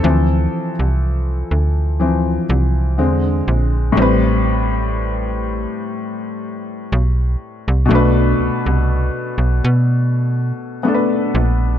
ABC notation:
X:1
M:4/4
L:1/16
Q:"Swing 16ths" 1/4=61
K:Am
V:1 name="Felt piano"
A8- A2 z6 | [A,,G,CB]16 | [B,,A,DB]12 [A,B,DAB]4 |]
V:2 name="Felt piano" clef=bass
[E,F,C]2 z6 [E,F,C]2 z2 [D,^G,C]4 | z16 | z16 |]
V:3 name="FM bass" clef=bass
D,,2 z C,,3 D,,4 C,,2 E,,2 _B,,,2 | A,,,6- A,,, z4 z B,,,2 z C,, | B,,,2 C,, C,,2 z B,,, B,,4 z3 _B,,,2 |]